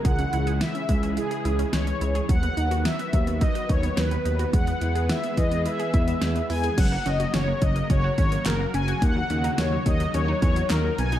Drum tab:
CC |----------------|----------------|----------------|x---------------|
HH |xxxxxxxxxxxxxxxx|xxxxxxxxxxxxxxxx|xxxxxxxxxxxxxxox|x-xxx-xxx-xxx-xx|
CP |----------------|----------------|----------------|------------x---|
SD |----o-------o---|----o-------o---|----o-------o---|----o-------o---|
BD |o-----o---------|o-----o-o-o-----|o-----o---o-----|o-----o-o-o-----|

CC |----------------|
HH |x-xxx-xxx-xxx-xx|
CP |------------x---|
SD |----o-------o---|
BD |o-----o---o-----|